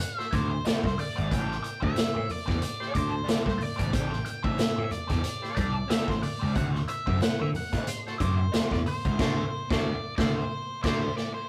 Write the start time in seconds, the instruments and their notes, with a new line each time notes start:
Already playing: lead electric guitar F#5
0.00 muted overdriven electric guitar stroke, closed hi-hat, muted conga
0.18 horn section F#4 A4 C5, lead electric guitar E5, snare
0.31 slap bass D2, overdriven electric guitar E4 F#4 D5, lead electric guitar C5, kick, closed hi-hat, muted conga, low conga
0.50 muted overdriven electric guitar stroke
0.65 overdriven electric guitar E4 F#4 C5, lead electric guitar D5, muted slap bass stroke, snare, closed hi-hat, tambourine, high conga
0.84 slap bass C2, lead electric guitar C5, kick, snare
0.98 lead electric guitar D5, muted overdriven electric guitar stroke, open hi-hat, high conga
1.16 slap bass G#1, overdriven electric guitar E4 F#4 C5, closed hi-hat
1.30 slap bass A1, overdriven electric guitar D4 G4 C5, lead electric guitar G5, kick, closed hi-hat, muted conga
1.51 snare
1.62 muted overdriven electric guitar stroke, closed hi-hat
1.80 slap bass D2, overdriven electric guitar D4 G4 C5, lead electric guitar E5, kick
1.94 muted overdriven electric guitar stroke, muted slap bass stroke, snare, closed hi-hat, tambourine, high conga
2.14 slap bass A2, muted overdriven electric guitar stroke
2.29 lead electric guitar D5, open hi-hat, low conga
2.46 slap bass E2, overdriven electric guitar D4 G4 C5, kick, snare
2.61 muted overdriven electric guitar stroke, closed hi-hat, muted conga
2.80 horn section E4 G4 C5, snare
2.94 slap bass D2, overdriven electric guitar D4 G4 D5, lead electric guitar C5, kick, closed hi-hat, muted conga
3.11 muted overdriven electric guitar stroke
3.24 overdriven electric guitar D4 G4 C5, muted slap bass stroke
3.28 lead electric guitar D5, snare, closed hi-hat, tambourine, high conga
3.46 slap bass C2, lead electric guitar C5, kick, snare
3.58 muted overdriven electric guitar stroke, open hi-hat, high conga
3.62 lead electric guitar D5
3.76 slap bass G#1, overdriven electric guitar D4 G4 C5, kick, closed hi-hat
3.91 slap bass A1, overdriven electric guitar D4 G4 C5, lead electric guitar G5, kick, closed hi-hat, muted conga
4.13 snare
4.25 muted overdriven electric guitar stroke, closed hi-hat, muted conga
4.43 slap bass A1, overdriven electric guitar D4 G4 C5, lead electric guitar E5, kick
4.57 muted overdriven electric guitar stroke, muted slap bass stroke, snare, closed hi-hat, tambourine, high conga
4.76 slap bass A2, muted overdriven electric guitar stroke
4.84 lead electric guitar E5
4.91 lead electric guitar D5, closed hi-hat, low conga
5.08 slap bass E2, overdriven electric guitar D4 G4 C5, kick, snare, closed hi-hat, low conga
5.22 muted overdriven electric guitar stroke, closed hi-hat, muted conga
5.41 horn section E4 G4 C5, snare
5.55 slap bass C2, overdriven electric guitar D4 G4 D5, lead electric guitar D5, kick, closed hi-hat, muted conga, low conga
5.74 muted overdriven electric guitar stroke
5.88 overdriven electric guitar D4 G4 C5, lead electric guitar E5, muted slap bass stroke, snare, closed hi-hat, tambourine, high conga
6.08 slap bass A1, lead electric guitar C5, kick, snare
6.22 lead electric guitar D5, muted overdriven electric guitar stroke, open hi-hat, high conga
6.40 slap bass C#2, overdriven electric guitar D4 G4 C5
6.54 slap bass D2, overdriven electric guitar E4 F#4 C5, lead electric guitar F#5, kick, closed hi-hat, muted conga
6.75 snare
6.88 lead electric guitar E5, muted overdriven electric guitar stroke, closed hi-hat
7.06 slap bass F#2, overdriven electric guitar E4 F#4 C5, kick
7.20 lead electric guitar F#5, muted overdriven electric guitar stroke, muted slap bass stroke, snare, closed hi-hat, tambourine, high conga
7.40 slap bass D3, lead electric guitar E5, muted overdriven electric guitar stroke
7.54 lead electric guitar F#5, open hi-hat, low conga
7.73 slap bass A2, overdriven electric guitar E4 F#4 C5, kick, snare, closed hi-hat
7.87 lead electric guitar C6, muted overdriven electric guitar stroke, closed hi-hat, muted conga
8.06 horn section F#4 A4 C5, snare
8.18 slap bass F#2, overdriven electric guitar E4 F#4 D5, lead electric guitar C5, kick, closed hi-hat, muted conga
8.38 muted overdriven electric guitar stroke
8.52 overdriven electric guitar E4 F#4 C5, muted slap bass stroke, snare, closed hi-hat, tambourine, high conga
8.71 slap bass E2, lead electric guitar D5, kick, snare
8.86 lead electric guitar C5, muted overdriven electric guitar stroke, open hi-hat, high conga
9.05 slap bass C#2, overdriven electric guitar E4 F#4 C5, kick, closed hi-hat
9.19 slap bass D2, overdriven electric guitar E4 F#4 C5, horn section F#4 A4 C5, kick, snare, crash
9.70 slap bass D2, overdriven electric guitar E4 F#4 C5, horn section F#4 A4 C5, lead electric guitar D5, kick, snare
10.16 slap bass D2, overdriven electric guitar E4 F#4 C5, horn section F#4 A4 C5, lead electric guitar D5, kick, snare
10.35 lead electric guitar C5
10.83 slap bass D2, overdriven electric guitar E4 F#4 D5, horn section F#4 A4 C5, lead electric guitar C5, kick, snare, crash
11.17 lead electric guitar D5, snare
11.34 lead electric guitar C5